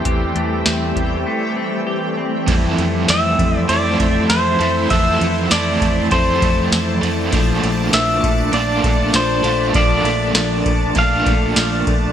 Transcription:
Already playing: ambient pad E3 G3 A3 C4 G4, clean electric guitar A3 C4, pedal steel guitar C5
0.05 fingered electric bass E2, clean electric guitar E3 G4, kick, closed hi-hat
0.35 fingered electric bass E2, clean electric guitar A3, closed hi-hat
0.66 fingered electric bass E2, clean electric guitar C4, snare, closed hi-hat
0.95 fingered electric bass E2, clean electric guitar G4, kick, closed hi-hat
1.26 clean electric guitar A3
1.56 clean electric guitar C4
1.87 clean electric guitar G4
2.17 clean electric guitar C4
2.46 fingered electric bass F2, clean electric guitar E3, overdriven electric guitar F3 A3 C4 E4, ambient pad E4 C5 E5 A5, kick, ride
2.52 overdriven electric guitar A4
2.78 fingered electric bass F2, clean electric guitar A3, ride
3.08 fingered electric bass F2, clean electric guitar E3, pedal steel guitar E5, snare, ride, tambourine
3.39 fingered electric bass F2, clean electric guitar A3, kick, ride
3.57 pedal steel guitar D5
3.68 fingered electric bass F2, overdriven electric guitar F3 A3 C4 E4 A4, clean electric guitar C4, pedal steel guitar D5, ride
3.99 fingered electric bass F2, clean electric guitar A3, kick, ride
4.30 fingered electric bass F2, clean electric guitar E3, pedal steel guitar C5, snare, ride, tambourine
4.59 fingered electric bass F2, clean electric guitar A3, overdriven electric guitar C4 E4 A4, ride
4.90 fingered electric bass F2, clean electric guitar E3, overdriven electric guitar F3 A3 C4 E4 A4, ambient pad D5, pedal steel guitar E5, kick, ride
5.21 fingered electric bass F2, clean electric guitar A3, ride
5.50 fingered electric bass F2, clean electric guitar E3, overdriven electric guitar A3 C4 E4 A4, pedal steel guitar D5, snare, ride, tambourine
5.81 fingered electric bass F2, clean electric guitar A3, kick, ride
6.11 fingered electric bass F2, overdriven electric guitar F3 A3 C4 E4 A4, clean electric guitar C4, pedal steel guitar C5, kick, ride
6.42 fingered electric bass F2, clean electric guitar A3, kick, ride
6.72 fingered electric bass F2, clean electric guitar E3, snare, ride, tambourine
7.01 fingered electric bass F2, clean electric guitar A3, overdriven electric guitar C4 E4 A4, ride
7.31 fingered electric bass A#1, clean electric guitar F3, overdriven electric guitar A#3 D4 F4, ambient pad D4, kick, ride
7.36 overdriven electric guitar A4
7.63 fingered electric bass A#1, clean electric guitar A3, ride
7.93 fingered electric bass A#1, clean electric guitar F3, pedal steel guitar E5, snare, ride, tambourine
8.23 fingered electric bass A#1, clean electric guitar A3, kick, ride
8.52 fingered electric bass A#1, overdriven electric guitar A#3 D4 F4 A4, clean electric guitar D4, pedal steel guitar D5, ride
8.84 fingered electric bass A#1, clean electric guitar A3, kick, ride
9.14 fingered electric bass A#1, clean electric guitar F3, pedal steel guitar C5, snare, ride, tambourine
9.43 fingered electric bass A#1, clean electric guitar A3, overdriven electric guitar D4 F4 A4, ride
9.73 fingered electric bass A#1, clean electric guitar F3, overdriven electric guitar A#3 D4 F4, pedal steel guitar D5, kick, ride
9.78 overdriven electric guitar A4
10.04 fingered electric bass A#1, clean electric guitar A3, ride
10.35 fingered electric bass A#1, clean electric guitar F3, snare, ride, tambourine
10.66 fingered electric bass A#1, clean electric guitar A3, kick, ride
10.95 fingered electric bass A#1, overdriven electric guitar A#3 D4 F4, clean electric guitar D4, pedal steel guitar F5, kick, ride
11.00 overdriven electric guitar A4
11.26 fingered electric bass A#1, clean electric guitar A3, kick, ride
11.56 fingered electric bass A#1, clean electric guitar F3, snare, ride, tambourine
11.87 fingered electric bass A#1, clean electric guitar A3, kick, ride

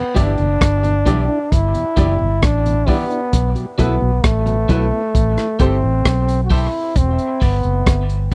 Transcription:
Already playing: trombone B3
0.15 fingered electric bass G1, clean electric guitar E3 B3 D4 G4, tonewheel organ G3 D4 E4, trombone D4, grand piano E4 G4 D5, kick, closed hi-hat
0.38 fingered electric bass F#1, tonewheel organ E2 B2, closed hi-hat
0.61 fingered electric bass G1, kick, cross-stick, closed hi-hat
0.83 tonewheel organ E2 B2, muted clean electric guitar stroke, closed hi-hat
1.06 fingered electric bass B1, clean electric guitar E3 B3 D4 G4, tonewheel organ G3 D4 E4, grand piano E4 G4 D5, kick, closed hi-hat
1.28 tonewheel organ D4 E4
1.52 fingered electric bass G1, trombone E4, kick, closed hi-hat
1.74 tonewheel organ E2 B2, closed hi-hat
1.96 fingered electric bass F#1, clean electric guitar E3 B3 D4 G4, tonewheel organ G3 D4 E4, grand piano E4 G4 D5, kick, closed hi-hat
2.19 fingered electric bass G1, tonewheel organ E2 B2
2.42 fingered electric bass A1, trombone D4, kick, cross-stick, closed hi-hat
2.65 tonewheel organ E2 B2, closed hi-hat
2.86 clean electric guitar E3 B3 D4 G4, tonewheel organ G3 D4 E4, trombone B3, grand piano E4 G4 D5, kick, open hi-hat
3.10 tonewheel organ D4 E4, grand piano G4 D5, closed hi-hat
3.33 fingered electric bass B1, kick, closed hi-hat
3.55 tonewheel organ B2 F#3, closed hi-hat
3.78 fingered electric bass B1, clean electric guitar F#3 B3 E4 A4, tonewheel organ A3 B3 E4, trombone B3, grand piano E4 A4 B4, kick, closed hi-hat
4.01 fingered electric bass B1, tonewheel organ B2 F#3
4.24 fingered electric bass A1, trombone A3, kick, cross-stick, closed hi-hat
4.46 tonewheel organ B2 F#3, muted clean electric guitar stroke, closed hi-hat
4.68 fingered electric bass B1, clean electric guitar F#3 B3 E4 A4, tonewheel organ A3 B3 E4, grand piano E4 A4 B4, kick, closed hi-hat
4.91 tonewheel organ B3 E4
5.15 fingered electric bass A1, kick, closed hi-hat
5.37 tonewheel organ A2 E3, cross-stick, closed hi-hat
5.59 fingered electric bass G1, clean electric guitar G3 C4 E4 A4, tonewheel organ A3 C4 G4, trombone C4, grand piano G4 A4 C5, kick, closed hi-hat
5.82 fingered electric bass A1, tonewheel organ A2 E3
6.05 fingered electric bass B1, kick, cross-stick, closed hi-hat
6.28 tonewheel organ A2 E3, closed hi-hat
6.44 trombone F#4
6.50 clean electric guitar G3 C4 E4 A4, tonewheel organ A3 C4 G4, trombone E4, grand piano G4 A4 C5, kick, open hi-hat
6.96 fingered electric bass E1, trombone C4, kick, closed hi-hat
7.18 closed hi-hat
7.40 fingered electric bass G1, clean electric guitar G3 B3 D4 G4, trombone B3, grand piano E4 G4 D5, kick, open hi-hat
7.63 fingered electric bass F#1, closed hi-hat
7.86 fingered electric bass G1, kick, cross-stick, closed hi-hat
8.09 closed hi-hat

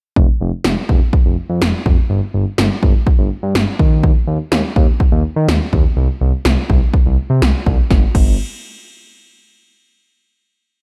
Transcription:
0.16 analog synth bass F1, kick
0.41 analog synth bass F1
0.64 analog synth bass F1, snare
0.89 analog synth bass F1, kick
1.13 kick
1.25 analog synth bass F1
1.49 analog synth bass F2
1.62 analog synth bass F1, snare
1.86 analog synth bass F1, kick
2.10 analog synth bass G1
2.34 analog synth bass G1
2.58 analog synth bass G1, snare
2.83 analog synth bass G1, kick
3.07 kick
3.19 analog synth bass G1
3.43 analog synth bass G2
3.55 analog synth bass G1, snare
3.79 analog synth bass D#2, kick
4.03 kick
4.27 analog synth bass D#2
4.51 analog synth bass D#2, snare
4.76 analog synth bass D#2, kick
5.00 kick
5.12 analog synth bass D#2
5.36 analog synth bass D#3
5.48 analog synth bass D#2, snare
5.73 analog synth bass D#2, kick
5.97 analog synth bass C2
6.21 analog synth bass C2
6.45 analog synth bass C2, snare
6.70 analog synth bass C2, kick
6.94 kick
7.06 analog synth bass C2
7.30 analog synth bass C3
7.42 analog synth bass C2, snare
7.66 analog synth bass C2, kick
7.91 analog synth bass G1, kick, snare
8.15 analog synth bass G1, kick, crash

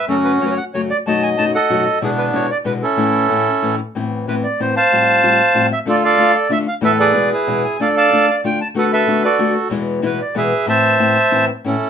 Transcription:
0.08 nylon-string guitar F#2 C#3 F#3 A3 C#4 F#4, bandoneon C#4 F#4 A4
0.25 bandoneon B4
0.40 nylon-string guitar F#2 C#3 F#3 A3 C#4 F#4, bandoneon C#5
0.45 bandoneon B4
0.51 bandoneon C#5
0.57 bandoneon F#5
0.74 nylon-string guitar F#2 C#3 F#3 A3 C#4 F#4, bandoneon C#5
0.90 bandoneon D5
1.06 nylon-string guitar F#2 B2 F#3 A3 D#4 F#4, bandoneon D#5 A5
1.23 bandoneon G#5
1.38 nylon-string guitar F#2 B2 F#3 A3 D#4 F#4, bandoneon A5
1.55 bandoneon A4 D#5 F#5
1.70 nylon-string guitar F#2 B2 F#3 A3 D#4 F#4
2.01 nylon-string guitar E2 B2 D3 G#3 B3 E4, bandoneon B3 D4 G#4
2.18 bandoneon B4
2.33 nylon-string guitar E2 B2 D3 G#3 B3 E4, bandoneon C#5
2.51 bandoneon D5
2.64 nylon-string guitar E2 B2 D3 G#3 B3 E4, bandoneon B4
2.82 bandoneon C#4 E4 A4
2.96 nylon-string guitar A2 E3 A3 C#4 E4
3.29 nylon-string guitar A2 E3 A3 C#4 E4
3.62 nylon-string guitar A2 E3 A3 C#4 E4
3.95 nylon-string guitar A2 E3 B3 C4 E4
4.27 nylon-string guitar A2 E3 B3 C4 E4, bandoneon B4
4.44 bandoneon D5
4.60 nylon-string guitar A2 E3 B3 C4 E4, bandoneon C5
4.76 bandoneon C5 F5 A5
4.92 nylon-string guitar A2 F3 G3 C4 F4
5.23 nylon-string guitar A2 F3 G3 C4 F4
5.54 nylon-string guitar A2 F3 G3 C4 F4
5.73 bandoneon E5
5.85 nylon-string guitar D3 A3 D4 F4, bandoneon F4 A4
5.90 bandoneon D5
6.04 bandoneon A4 D5 F5
6.18 nylon-string guitar D3 A3 D4 F4
6.35 bandoneon D5
6.49 nylon-string guitar D3 A3 D4 F4, bandoneon E5
6.68 bandoneon F5
6.81 nylon-string guitar E2 A2 E3 A3 B3 E4, bandoneon A4 B4 E5
6.99 bandoneon G#4 B4 D5
7.14 nylon-string guitar E2 B2 E3 G#3 B3 E4
7.32 bandoneon E4 G#4 B4
7.47 nylon-string guitar E2 B2 E3 G#3 B3 E4
7.64 bandoneon G#5
7.79 nylon-string guitar D3 A3 D4 F4, bandoneon A4 D5 F5
7.97 bandoneon D5 F5 A5
8.11 nylon-string guitar D3 A3 D4 F4
8.30 bandoneon F5
8.44 nylon-string guitar D3 A3 D4 F4, bandoneon G5
8.61 bandoneon A5
8.74 nylon-string guitar D3 A3 B3 F#4, bandoneon A4 B4
8.79 bandoneon F#5
8.93 bandoneon A4 B4 E5
9.07 nylon-string guitar D3 A3 B3 F#4
9.24 bandoneon F#4 A4 D5
9.39 nylon-string guitar D3 A3 B3 F#4
9.70 nylon-string guitar E2 B2 E3 G#3 B3 E4
10.02 nylon-string guitar E2 B2 E3 G#3 B3 E4, bandoneon B4
10.21 bandoneon D5
10.35 nylon-string guitar E2 B2 E3 G#3 B3 E4, bandoneon G#4 B4 E5
10.66 nylon-string guitar A2 E3 C4 E4, bandoneon C5 E5 A5
10.99 nylon-string guitar A2 E3 B3 C4 E4
11.31 nylon-string guitar A2 E3 B3 C4 E4
11.64 nylon-string guitar A2 E3 A3 C#4 E4, bandoneon C#4 E4 A4

